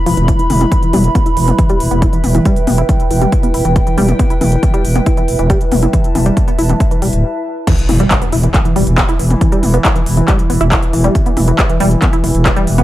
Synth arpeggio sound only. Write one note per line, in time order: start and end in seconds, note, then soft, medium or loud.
0.06 0.15 F3 loud
0.17 0.23 E3 medium
0.28 0.37 E3 loud
0.39 0.48 E3 medium
0.50 0.56 D3 medium
0.61 0.67 E4 medium
0.83 0.91 E3 medium
0.93 1.02 G3 loud
1.15 1.19 B3 medium
1.26 1.30 E4 medium
1.37 1.43 E3 medium
1.59 1.67 E3 medium
1.69 1.78 G3 loud
1.91 1.95 B3 medium
2.02 2.06 E4 medium
2.13 2.19 E3 medium
2.35 2.43 E3 medium
2.46 2.54 G3 loud
2.67 2.71 B3 medium
2.78 2.82 E4 medium
2.89 2.95 E3 medium
3.11 3.20 E3 medium
3.22 3.30 G3 loud
3.43 3.47 B3 medium
3.54 3.58 E4 medium
3.65 3.71 E3 medium
3.87 3.96 E3 medium
3.98 4.07 G3 loud
4.19 4.23 B3 medium
4.30 4.34 E4 medium
4.41 4.47 E3 medium
4.63 4.72 E3 medium
4.74 4.83 G3 loud
4.95 4.99 B3 medium
5.06 5.10 E4 medium
5.17 5.23 E3 medium
5.39 5.48 E3 medium
5.50 5.59 G3 loud
5.72 5.75 B3 medium
5.83 5.86 E4 medium
5.93 5.99 E3 medium
6.15 6.24 E3 medium
6.26 6.35 G3 loud
6.48 6.51 B3 medium
6.59 6.62 E4 medium
6.69 6.75 E3 medium
6.91 7.00 E3 medium
7.02 7.08 G3 medium
7.67 7.73 E3 medium
7.89 7.98 E3 medium
8.00 8.09 G3 loud
8.22 8.25 B3 medium
8.32 8.36 E4 medium
8.43 8.49 E3 medium
8.65 8.74 E3 medium
8.76 8.85 G3 loud
8.98 9.01 B3 medium
9.09 9.12 E4 medium
9.19 9.25 E3 medium
9.41 9.50 E3 medium
9.52 9.61 G3 loud
9.74 9.77 B3 medium
9.85 9.88 E4 medium
9.96 10.01 E3 medium
10.17 10.26 E3 medium
10.28 10.37 G3 loud
10.50 10.53 B3 medium
10.61 10.64 E4 medium
10.72 10.77 E3 medium
10.93 11.02 E3 medium
11.04 11.13 G3 loud
11.26 11.30 B3 medium
11.37 11.40 E4 medium
11.48 11.54 E3 medium
11.69 11.78 E3 medium
11.80 11.89 G3 loud
12.02 12.06 B3 medium
12.13 12.16 E4 medium
12.24 12.30 E3 medium
12.45 12.54 E3 medium
12.56 12.65 G3 loud
12.78 12.82 B3 medium